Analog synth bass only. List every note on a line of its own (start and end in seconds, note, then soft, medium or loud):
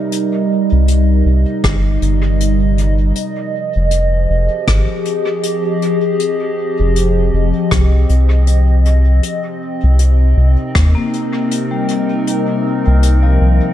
0.72 1.23 C2 medium
1.25 1.45 C2 medium
1.64 1.98 G1 medium
2.02 3.13 G1 loud
3.76 4.27 F1 loud
4.30 4.49 F1 medium
4.68 4.87 G#1 medium
6.80 7.30 F1 medium
7.33 7.53 F1 medium
7.71 8.06 C2 medium
8.10 9.20 C2 medium
9.84 10.34 C2 medium
10.37 10.57 C2 medium
10.75 10.95 D#2 medium
12.87 13.38 C2 loud
13.41 13.61 C2 medium